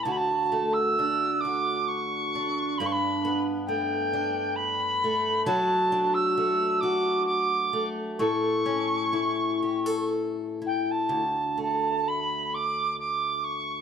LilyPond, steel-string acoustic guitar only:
\new Staff \with { instrumentName = "Steel-string acoustic guitar" } { \time 3/4 \key d \major \tempo 4 = 66 <d, fis'>8 a8 d'8 fis'4 d'8 | <g, d'>8 b8 a8 d'4 a8 | <fis fis'>8 d'8 a8 fis'4 a8 | <a, a'>8 cis'8 e'8 g'16 a'8. e'8 |
d,8 a2~ a8 | }